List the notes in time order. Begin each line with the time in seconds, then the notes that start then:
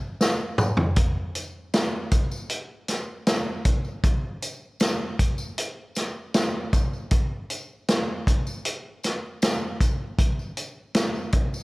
0.21 snare, tambourine
0.58 mid tom, tambourine
0.77 floor tom
0.96 kick, closed hi-hat
1.35 closed hi-hat, tambourine
1.73 snare, closed hi-hat, tambourine
2.11 kick, closed hi-hat
2.31 tambourine
2.50 closed hi-hat
2.88 snare, closed hi-hat, tambourine
3.27 snare, closed hi-hat, tambourine
3.65 kick, closed hi-hat
3.85 tambourine
4.03 kick, closed hi-hat
4.42 closed hi-hat, tambourine
4.80 snare, closed hi-hat, tambourine
5.19 kick, closed hi-hat
5.38 tambourine
5.58 closed hi-hat, tambourine
5.95 snare, closed hi-hat, tambourine
6.34 snare, closed hi-hat, tambourine
6.73 kick, closed hi-hat, tambourine
6.93 tambourine
7.11 kick, closed hi-hat
7.50 closed hi-hat, tambourine
7.88 snare, closed hi-hat, tambourine
8.27 kick, closed hi-hat
8.47 tambourine
8.65 closed hi-hat, tambourine
9.03 snare, closed hi-hat, tambourine
9.42 snare, closed hi-hat, tambourine
9.81 kick, closed hi-hat, tambourine
10.18 kick, closed hi-hat
10.39 tambourine
10.57 closed hi-hat, tambourine
10.95 snare, closed hi-hat, tambourine
11.14 tambourine
11.32 kick, closed hi-hat
11.54 tambourine